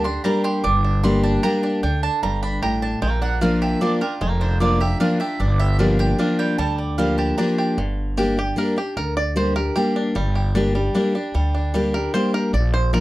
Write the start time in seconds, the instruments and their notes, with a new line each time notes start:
Already playing: upright bass D2, steel-string acoustic guitar D3, five-string banjo G3 G4
0.04 five-string banjo D4, steel-string acoustic guitar D4 G4, mandolin C6
0.24 steel-string acoustic guitar G3 A#3 D4 G4, five-string banjo G3, mandolin A#5
0.44 five-string banjo G4, mandolin C6
0.64 upright bass G1, steel-string acoustic guitar G2, five-string banjo D4, mandolin D6
0.84 five-string banjo D4
1.03 steel-string acoustic guitar G3 A#3 D4 G4, five-string banjo G3, mandolin C6
1.23 five-string banjo D4, mandolin A5
1.43 steel-string acoustic guitar G3 A#3 D4 G4, five-string banjo G4, mandolin A#5
1.63 five-string banjo D4, mandolin A5
1.83 upright bass D2, steel-string acoustic guitar D3, five-string banjo D4, mandolin G5
2.03 five-string banjo D4, mandolin A5
2.23 upright bass G1, steel-string acoustic guitar G2, five-string banjo G3, mandolin A#5
2.43 five-string banjo D4, mandolin B5
2.62 upright bass A1, steel-string acoustic guitar A2, five-string banjo G4, mandolin A#5
2.82 five-string banjo D4, mandolin A5
3.02 upright bass A#1, steel-string acoustic guitar A#2, five-string banjo G#3, mandolin G5
3.10 five-string banjo A#3
3.22 five-string banjo D4, mandolin F#5
3.41 steel-string acoustic guitar F3 A#3 D4 F4, five-string banjo A#3, mandolin F5
3.62 five-string banjo G4, mandolin E5
3.81 steel-string acoustic guitar F3 A#3 D4 F4, five-string banjo D4, mandolin D5
4.01 steel-string acoustic guitar D4 F4, five-string banjo G4, mandolin A#4
4.21 upright bass F1, steel-string acoustic guitar F2, five-string banjo G#3
4.29 five-string banjo A#3
4.41 five-string banjo D4, mandolin C5
4.60 steel-string acoustic guitar F3 A#3 D4 F4, five-string banjo A#3, mandolin D5
4.80 steel-string acoustic guitar F4, five-string banjo G4, mandolin E5
5.00 steel-string acoustic guitar F3 A#3 D4 F4, five-string banjo D4, mandolin F5
5.20 steel-string acoustic guitar F4, five-string banjo G4, mandolin E5
5.39 upright bass G1, steel-string acoustic guitar G2, five-string banjo D4, mandolin D5
5.59 five-string banjo G3, mandolin E5
5.79 steel-string acoustic guitar F3 A#3 D4 G4, five-string banjo D4, mandolin F5
5.99 five-string banjo G4, mandolin G5
6.18 steel-string acoustic guitar F3 A#3 D4 G4, five-string banjo D4, mandolin F5
6.39 five-string banjo G3, mandolin G5
6.58 upright bass D2, steel-string acoustic guitar D3, five-string banjo G3, mandolin A5
6.78 mandolin D5
6.98 steel-string acoustic guitar F3 A#3 D4 G4, five-string banjo G3, mandolin F5
7.18 five-string banjo G4, mandolin A5
7.38 steel-string acoustic guitar F3 A#3 D4 G4, five-string banjo D4, mandolin A#5
7.58 five-string banjo G4
7.78 upright bass G1, steel-string acoustic guitar G2, five-string banjo D3
8.17 steel-string acoustic guitar G3 A#3 D4 G4, five-string banjo G4
8.37 steel-string acoustic guitar D4 G4, five-string banjo G4
8.56 steel-string acoustic guitar G3 A#3 D4 G4, five-string banjo A#4
8.76 steel-string acoustic guitar D4 G4, five-string banjo G4
8.97 upright bass D2, steel-string acoustic guitar D3, five-string banjo A#4
9.17 five-string banjo D5
9.36 steel-string acoustic guitar G3 A#3 D4 G4, five-string banjo C5
9.56 steel-string acoustic guitar D4 G4, five-string banjo A#4
9.76 steel-string acoustic guitar G3 A#3 D4 G4, five-string banjo G4
9.96 five-string banjo D4
10.15 upright bass G1, steel-string acoustic guitar G2, five-string banjo G3
10.35 five-string banjo G4
10.55 steel-string acoustic guitar G3 A#3 D4 G4, five-string banjo D4
10.75 five-string banjo G3, steel-string acoustic guitar D4 G4
10.95 steel-string acoustic guitar G3 A#3 D4 G4, five-string banjo D4
11.15 five-string banjo D4, steel-string acoustic guitar D4 G4
11.34 upright bass D2, steel-string acoustic guitar D3, five-string banjo G3
11.55 five-string banjo D4
11.74 steel-string acoustic guitar G3 A#3 D4 G4, five-string banjo G3
11.94 steel-string acoustic guitar D4 G4, five-string banjo A#4
12.14 steel-string acoustic guitar G3 A#3 D4 G4, five-string banjo C5
12.34 five-string banjo A#4
12.53 upright bass A#1, steel-string acoustic guitar A#2, five-string banjo D5
12.74 five-string banjo C5
12.93 steel-string acoustic guitar F3 A#3 D4 F4, five-string banjo A#4